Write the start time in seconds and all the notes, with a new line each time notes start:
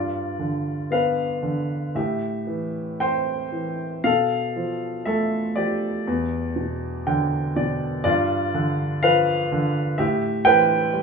Already playing: G2 F4 D5
0.39 D3
0.91 B3 B4 F5
1.43 D3
1.95 A2 G4 E5
2.47 E3
3.00 C4 C5 G5
3.52 E3
4.04 B2 A4 F5
4.56 F3
5.05 A3 A4 E5
5.56 F3 G4 D5
6.07 E2
6.56 B2
7.07 D3 G5
7.56 B2 D5
8.04 G2 F4 D5
8.54 D3
9.03 F3 B4 F5
9.52 D3
9.98 A2 G4 E5
10.45 E3 B4 G5
10.93 G3